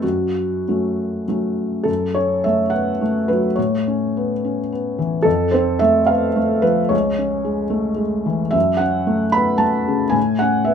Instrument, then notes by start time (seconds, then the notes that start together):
felt piano
0.02 F#2 F#4
0.68 F#3 A3 C#4
1.28 F#3 A3 C#4
1.83 F#2 A4
2.15 C#4 C#5
2.44 A3 E5
2.70 B3 F#5
3.01 A3
3.28 F#3 B4
3.56 A2 C#5
3.87 C#4
4.17 B3
4.44 C#4
4.72 B3
4.99 E3
5.22 F2 A4
5.51 C4 C5
5.79 A3 E5
6.06 B3 F5
6.36 A3
6.62 F3 B4
6.89 C#2 C#5
7.18 C#4
7.45 G#3
7.70 A3
7.96 G#3
8.26 E3
8.51 F#2 E5
8.77 C#4 F#5
9.07 A3
9.32 B3 B5
9.58 A3 A5
9.88 C#3
10.10 A2 G#5
10.39 C#4 F#5
10.65 B3 E5